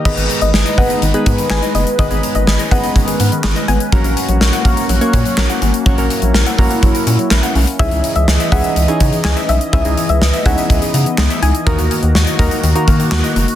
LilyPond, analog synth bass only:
\new Staff \with { instrumentName = "Analog synth bass" } { \clef bass \time 4/4 \key gis \minor \tempo 4 = 124 gis,,16 gis,,16 r16 gis,,16 gis,,16 r16 gis,,16 r16 gis,,16 r16 gis,16 r16 gis,,16 r16 fis,,16 r16 | gis,,16 gis,,16 r16 gis,,16 gis,,16 r16 gis,,16 r16 gis,,16 r16 gis,16 r16 gis,,16 r16 gis,,16 r16 | ais,,16 ais,,16 r16 ais,,16 ais,,16 r16 ais,,16 r16 ais,,16 r16 ais,16 r16 ais,,16 r16 gis,,16 r16 | ais,,16 ais,,16 r16 ais,,16 ais,,16 r16 ais,,16 r16 ais,,16 r16 ais,16 r16 ais,,16 r16 b,,16 r16 |
cis,16 cis,16 r16 cis,16 cis,16 r16 cis,16 r16 cis,16 r16 cis16 r16 cis,16 r16 b,,16 r16 | cis,16 cis,16 r16 cis,16 cis,16 r16 cis,16 r16 cis,16 r16 cis16 r16 cis,16 r16 cis,16 r16 | dis,16 dis,16 r16 dis,16 dis,16 r16 dis,16 r16 dis,16 r16 dis16 r16 dis,16 r16 fis,,16 r16 | }